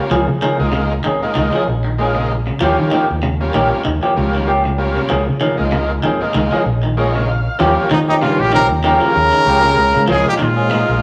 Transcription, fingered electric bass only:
0, 0, Header, 1, 3, 480
1, 0, Start_track
1, 0, Tempo, 623701
1, 86, Time_signature, 4, 2, 24, 8
1, 8482, End_track
2, 0, Start_track
2, 0, Title_t, "Fingered electric bass"
2, 0, Program_c, 0, 33
2, 86, Note_on_c, 0, 37, 83
2, 201, Note_off_c, 0, 37, 0
2, 216, Note_on_c, 0, 49, 74
2, 423, Note_off_c, 0, 49, 0
2, 457, Note_on_c, 0, 37, 76
2, 755, Note_off_c, 0, 37, 0
2, 810, Note_on_c, 0, 32, 79
2, 924, Note_off_c, 0, 32, 0
2, 1053, Note_on_c, 0, 37, 95
2, 1165, Note_off_c, 0, 37, 0
2, 1293, Note_on_c, 0, 34, 86
2, 1907, Note_off_c, 0, 34, 0
2, 2012, Note_on_c, 0, 39, 88
2, 2125, Note_off_c, 0, 39, 0
2, 2147, Note_on_c, 0, 51, 80
2, 2351, Note_off_c, 0, 51, 0
2, 2389, Note_on_c, 0, 39, 81
2, 2683, Note_off_c, 0, 39, 0
2, 2733, Note_on_c, 0, 34, 85
2, 2846, Note_off_c, 0, 34, 0
2, 2974, Note_on_c, 0, 39, 95
2, 3087, Note_off_c, 0, 39, 0
2, 3212, Note_on_c, 0, 37, 89
2, 3826, Note_off_c, 0, 37, 0
2, 3935, Note_on_c, 0, 37, 91
2, 4047, Note_off_c, 0, 37, 0
2, 4071, Note_on_c, 0, 49, 78
2, 4273, Note_off_c, 0, 49, 0
2, 4304, Note_on_c, 0, 37, 86
2, 4599, Note_off_c, 0, 37, 0
2, 4658, Note_on_c, 0, 32, 87
2, 4769, Note_off_c, 0, 32, 0
2, 4888, Note_on_c, 0, 37, 95
2, 5003, Note_off_c, 0, 37, 0
2, 5125, Note_on_c, 0, 34, 90
2, 5741, Note_off_c, 0, 34, 0
2, 5853, Note_on_c, 0, 39, 98
2, 5965, Note_off_c, 0, 39, 0
2, 6088, Note_on_c, 0, 51, 92
2, 6461, Note_on_c, 0, 34, 79
2, 6473, Note_off_c, 0, 51, 0
2, 6698, Note_off_c, 0, 34, 0
2, 6698, Note_on_c, 0, 39, 81
2, 6904, Note_off_c, 0, 39, 0
2, 7048, Note_on_c, 0, 39, 80
2, 7161, Note_off_c, 0, 39, 0
2, 7282, Note_on_c, 0, 37, 93
2, 7488, Note_off_c, 0, 37, 0
2, 7525, Note_on_c, 0, 37, 86
2, 7640, Note_off_c, 0, 37, 0
2, 7663, Note_on_c, 0, 44, 84
2, 7752, Note_off_c, 0, 44, 0
2, 7771, Note_on_c, 0, 37, 97
2, 7883, Note_off_c, 0, 37, 0
2, 8013, Note_on_c, 0, 46, 86
2, 8328, Note_off_c, 0, 46, 0
2, 8382, Note_on_c, 0, 34, 92
2, 8482, Note_off_c, 0, 34, 0
2, 8482, End_track
3, 0, Start_track
3, 0, Title_t, "Muted fingered electric bass strokes"
3, 944, Note_on_c, 9, 29, 35
3, 1021, Note_off_c, 9, 29, 0
3, 2871, Note_on_c, 9, 29, 34
3, 2948, Note_off_c, 9, 29, 0
3, 4786, Note_on_c, 9, 29, 38
3, 4863, Note_off_c, 9, 29, 0
3, 8482, End_track
0, 0, End_of_file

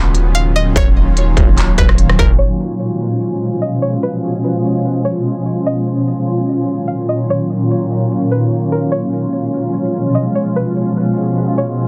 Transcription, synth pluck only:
0, 0, Header, 1, 2, 480
1, 0, Start_track
1, 0, Tempo, 408163
1, 894, Time_signature, 4, 2, 24, 8
1, 13969, End_track
2, 0, Start_track
2, 0, Title_t, "Synth pluck"
2, 0, Program_c, 0, 84
2, 408, Note_on_c, 0, 77, 83
2, 639, Note_off_c, 0, 77, 0
2, 656, Note_on_c, 0, 75, 76
2, 883, Note_off_c, 0, 75, 0
2, 907, Note_on_c, 0, 73, 119
2, 1352, Note_off_c, 0, 73, 0
2, 2096, Note_on_c, 0, 71, 85
2, 2547, Note_off_c, 0, 71, 0
2, 2576, Note_on_c, 0, 70, 74
2, 2803, Note_off_c, 0, 70, 0
2, 2805, Note_on_c, 0, 73, 105
2, 3261, Note_off_c, 0, 73, 0
2, 4254, Note_on_c, 0, 75, 72
2, 4482, Note_off_c, 0, 75, 0
2, 4494, Note_on_c, 0, 73, 74
2, 4722, Note_off_c, 0, 73, 0
2, 4739, Note_on_c, 0, 71, 100
2, 5188, Note_off_c, 0, 71, 0
2, 5936, Note_on_c, 0, 73, 82
2, 6612, Note_off_c, 0, 73, 0
2, 6662, Note_on_c, 0, 75, 106
2, 7110, Note_off_c, 0, 75, 0
2, 8087, Note_on_c, 0, 77, 80
2, 8318, Note_off_c, 0, 77, 0
2, 8337, Note_on_c, 0, 75, 73
2, 8564, Note_off_c, 0, 75, 0
2, 8587, Note_on_c, 0, 73, 114
2, 9032, Note_off_c, 0, 73, 0
2, 9776, Note_on_c, 0, 71, 82
2, 10227, Note_off_c, 0, 71, 0
2, 10256, Note_on_c, 0, 70, 66
2, 10483, Note_off_c, 0, 70, 0
2, 10487, Note_on_c, 0, 73, 100
2, 10941, Note_off_c, 0, 73, 0
2, 11933, Note_on_c, 0, 75, 70
2, 12162, Note_off_c, 0, 75, 0
2, 12175, Note_on_c, 0, 73, 69
2, 12403, Note_off_c, 0, 73, 0
2, 12421, Note_on_c, 0, 71, 101
2, 12869, Note_off_c, 0, 71, 0
2, 13617, Note_on_c, 0, 73, 82
2, 13969, Note_off_c, 0, 73, 0
2, 13969, End_track
0, 0, End_of_file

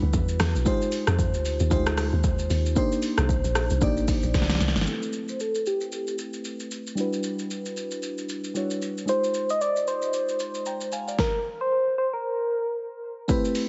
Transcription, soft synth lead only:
0, 0, Header, 1, 2, 480
1, 0, Start_track
1, 0, Tempo, 526316
1, 602, Time_signature, 4, 2, 24, 8
1, 12483, End_track
2, 0, Start_track
2, 0, Title_t, "Soft synth lead"
2, 0, Program_c, 0, 80
2, 4450, Note_on_c, 0, 69, 101
2, 4830, Note_on_c, 0, 72, 99
2, 4844, Note_off_c, 0, 69, 0
2, 4926, Note_off_c, 0, 72, 0
2, 4931, Note_on_c, 0, 69, 94
2, 5150, Note_off_c, 0, 69, 0
2, 5171, Note_on_c, 0, 67, 89
2, 5613, Note_off_c, 0, 67, 0
2, 8291, Note_on_c, 0, 72, 94
2, 8667, Note_on_c, 0, 75, 102
2, 8681, Note_off_c, 0, 72, 0
2, 8767, Note_on_c, 0, 74, 103
2, 8781, Note_off_c, 0, 75, 0
2, 9007, Note_on_c, 0, 72, 91
2, 9021, Note_off_c, 0, 74, 0
2, 9485, Note_off_c, 0, 72, 0
2, 10210, Note_on_c, 0, 70, 108
2, 10559, Note_off_c, 0, 70, 0
2, 10588, Note_on_c, 0, 72, 108
2, 10902, Note_off_c, 0, 72, 0
2, 10928, Note_on_c, 0, 72, 103
2, 11055, Note_off_c, 0, 72, 0
2, 11066, Note_on_c, 0, 70, 94
2, 11848, Note_off_c, 0, 70, 0
2, 12483, End_track
0, 0, End_of_file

